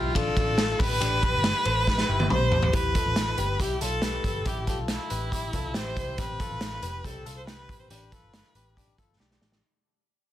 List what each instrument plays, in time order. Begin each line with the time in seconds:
Already playing: picked electric bass B1, clean electric guitar E4 G4, viola F4
0.15 picked electric bass A1, clean electric guitar D4 F4, viola A4, kick, ride
0.37 picked electric bass A1, kick, ride
0.58 clean electric guitar F4 A4, snare, ride
0.79 picked electric bass A1, clean electric guitar G4 B4, viola B4, kick, open hi-hat, ride
1.00 picked electric bass A1, clean electric guitar D4 G4, hi-hat pedal, ride
1.22 clean electric guitar G4 B4, kick, ride
1.34 picked electric bass G1
1.44 snare, ride
1.65 picked electric bass A1, clean electric guitar A4 C5, ride
1.87 clean electric guitar G4 B4, kick, snare
1.98 snare
2.08 picked electric bass G1, clean electric guitar E4 G4
2.20 high tom
2.30 picked electric bass B1, clean electric guitar G4 B5, viola C5, mid tom
2.52 picked electric bass A1, floor tom
2.63 floor tom
2.73 picked electric bass A1, clean electric guitar E4 G4, viola B4, kick, closed hi-hat
2.95 clean electric guitar F4 A4, kick, closed hi-hat
3.06 picked electric bass A1
3.16 snare, closed hi-hat
3.38 picked electric bass G1, clean electric guitar G4 B4, closed hi-hat
3.59 picked electric bass B1, clean electric guitar E4 G4, viola G4, kick, closed hi-hat
3.81 picked electric bass B1, clean electric guitar F4 A4, viola A4, closed hi-hat
4.02 clean electric guitar G4 B4, snare, closed hi-hat
4.24 picked electric bass G1, kick, closed hi-hat
4.46 picked electric bass A1, clean electric guitar E4 G4, viola G4, kick, closed hi-hat
4.67 clean electric guitar F4 A4, viola G4, kick, closed hi-hat
4.79 picked electric bass B1
4.88 viola E4, snare, closed hi-hat
5.10 picked electric bass A1, clean electric guitar G4 B4, closed hi-hat
5.32 clean electric guitar E4 G4, kick, closed hi-hat
5.53 picked electric bass C2, clean electric guitar F4 A4, kick, closed hi-hat
5.74 picked electric bass A1, clean electric guitar E4 G4, viola C5, snare, closed hi-hat
5.97 picked electric bass C2, kick, closed hi-hat
6.18 picked electric bass A1, clean electric guitar C4 G4, viola B4, kick, closed hi-hat
6.40 clean electric guitar F4 A4, kick, closed hi-hat
6.50 picked electric bass A1
6.61 snare, closed hi-hat
6.82 picked electric bass F1, clean electric guitar G4 B4, closed hi-hat
7.04 picked electric bass C2, clean electric guitar C4 G4, viola A4, kick, closed hi-hat
7.26 picked electric bass C2, clean electric guitar F4 A4, closed hi-hat
7.37 viola C5
7.47 clean electric guitar G4 B4, viola B4, snare, closed hi-hat
7.69 picked electric bass A1, kick, closed hi-hat
7.80 viola C5
7.90 picked electric bass A1, clean electric guitar D4 G4, viola B4, closed hi-hat
8.12 clean electric guitar F4 A4, kick, closed hi-hat
8.23 picked electric bass G1
8.34 snare, closed hi-hat
8.55 picked electric bass A1, clean electric guitar G4 B4, closed hi-hat
8.77 clean electric guitar D4 G4, kick, closed hi-hat
8.98 picked electric bass G1, clean electric guitar F4 A4, kick, closed hi-hat
9.20 picked electric bass B1, clean electric guitar D4 G4, snare
9.31 snare
9.42 picked electric bass A1, snare
9.52 snare